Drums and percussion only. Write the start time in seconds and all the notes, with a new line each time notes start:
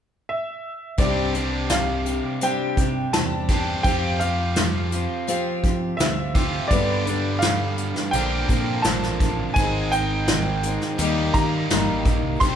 0.98 kick, closed hi-hat
1.34 closed hi-hat
1.69 snare, closed hi-hat
2.06 closed hi-hat
2.41 closed hi-hat
2.77 kick, closed hi-hat
3.13 snare, closed hi-hat
3.49 kick, closed hi-hat
3.84 kick, closed hi-hat
4.20 closed hi-hat
4.56 snare, closed hi-hat
4.92 closed hi-hat
5.28 closed hi-hat
5.64 kick, closed hi-hat
6.00 snare, closed hi-hat
6.35 kick, closed hi-hat
6.71 kick, closed hi-hat
7.07 closed hi-hat
7.42 snare, closed hi-hat
7.78 closed hi-hat
7.96 snare
8.13 closed hi-hat
8.49 kick, closed hi-hat
8.84 snare, closed hi-hat
9.03 snare
9.20 kick, closed hi-hat
9.56 kick, closed hi-hat
9.92 closed hi-hat
10.27 snare, closed hi-hat
10.63 closed hi-hat
10.81 snare
10.98 closed hi-hat
11.34 kick, closed hi-hat
11.70 snare, closed hi-hat
12.05 kick, closed hi-hat
12.41 kick, closed hi-hat